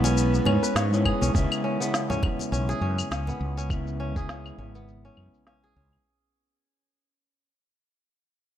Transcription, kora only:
Already playing: B3 G#4
0.04 C#4
0.46 C#4
0.63 B4
0.76 C#5
1.05 G#4
1.22 C#4
1.34 C#4
1.64 C#4
1.80 B3
2.10 C#4
2.52 C#4
2.69 G#4
2.82 C#4
3.11 C#4
3.28 B3
3.57 C#4
4.00 C#4
4.16 G#4
4.29 C#4
4.58 C#4
4.75 B3
5.05 C#4
5.47 C#4
5.64 G#4
5.76 C#4

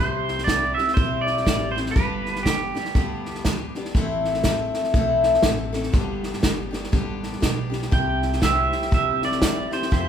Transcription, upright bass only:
0.00 C2
0.97 B1
1.47 A1
1.96 G1
2.95 D2
3.95 A1
4.94 B1
5.44 A1
5.94 G1
6.43 G1
6.93 A1
7.43 B1
7.93 C2
8.92 G1
9.92 F2

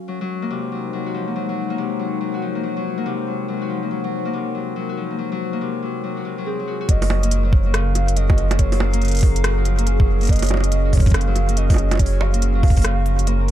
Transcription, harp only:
0.08 F#3
0.21 F#3
0.42 A#3
0.50 C3
0.72 F#3
0.93 F#3
1.06 F#4
1.14 F3
1.28 A#3
1.36 F#3
1.49 F#3
1.70 A#3
1.78 C3
1.99 F#3
2.21 F#3
2.34 F#4
2.42 F3
2.55 A#3
2.63 F#3
2.76 F#3
2.98 A#3
3.06 C3
3.27 F#3
3.48 F#3
3.62 F#4
3.70 F3
3.83 A#3
3.91 F#3
4.04 F#3
4.25 A#3
4.33 C3
4.55 F#3
4.76 F#3
4.89 F#4
4.97 F3
5.10 A#3
5.19 F#3
5.32 F#3
5.53 A#3
5.61 C3
5.82 F#3
6.04 F#3
6.17 F#4
6.25 C3
6.38 F#3
6.46 C4
6.59 F#3
6.68 F#4
6.81 F#4
6.89 F#3
7.02 F#4
7.10 F3
7.23 A#3
7.31 F#3
7.45 F#3
7.66 A#3
7.74 C#3
7.95 F#3
8.17 F#3
8.30 F#4
8.38 F3
8.51 A#3
8.59 F#3
8.72 F#3
8.94 A#3
9.02 C#3
9.23 F#3
9.44 F#3
9.57 F#4
9.65 F3
9.79 A#3
9.87 F#3
10.00 F#3
10.21 A#3
10.29 C#3
10.51 F#3
10.72 F#3
10.85 F#4
10.93 F3
11.06 A#3
11.14 F#3
11.27 F#3
11.49 A#3
11.57 C#3
11.78 F#3
11.99 F#3
12.13 F#4
12.21 F3
12.34 A#3
12.42 F#3
12.55 F#3
12.76 A#3
12.85 C#3
13.06 F3
13.27 A#3
13.40 C4

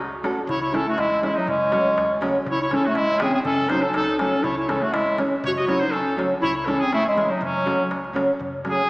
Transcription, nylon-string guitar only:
0.23 A3 C#4 F#4 A4
0.72 E3 G#3 C#4 E4
1.21 E3 G#3 C#4 E4
1.71 C#3 F#3 A3 C#4
2.21 C#3 F#3 A3 C#4
2.71 C#3 E3 G#3 C#4
3.20 C#3 E3 G#3 C#4
3.70 C#3 F#3 A3 C#4
4.19 C#3 F#3 A3 C#4
4.68 C#3 E3 G#3 C#4
5.17 C#3 E3 G#3 C#4
5.66 C#3 F#3 A3 C#4
6.16 C#3 F#3 A3 C#4
6.66 C#3 E3 G#3 C#4
7.15 C#3 E3 G#3 C#4
7.65 C#3 F#3 A3 C#4
8.13 C#3 F#3 A3 C#4
8.64 C#3 F#3 A3 C#4

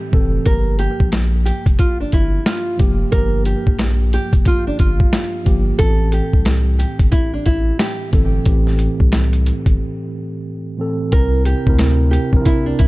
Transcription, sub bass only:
0.13 F1
0.46 G1
1.00 A#1
1.66 F1
2.00 G1
2.13 G1
2.80 F1
3.13 G1
3.67 A#1
4.33 F1
4.67 G1
4.80 G1
5.46 G1
5.80 A1
6.33 C2
6.99 G1
7.33 A1
7.46 A1
8.13 G1
8.46 A1
9.00 C2
9.66 G1
11.13 C2
11.67 D2
12.33 A#1
12.67 C2
12.80 C2

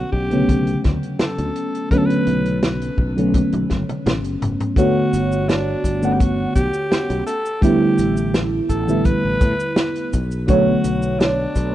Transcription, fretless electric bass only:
0.13 B1
0.85 D2
1.38 D2
2.27 B1
2.98 B1
3.53 B1
3.71 F#1
3.89 muted fretless electric bass stroke
4.06 A1
4.25 F#1
4.42 F#1
5.13 G1
5.84 G1
6.56 B1
7.10 B1
7.99 A1
8.69 A1
9.24 A1
9.41 A2
10.13 B1
10.84 B1
11.56 B1

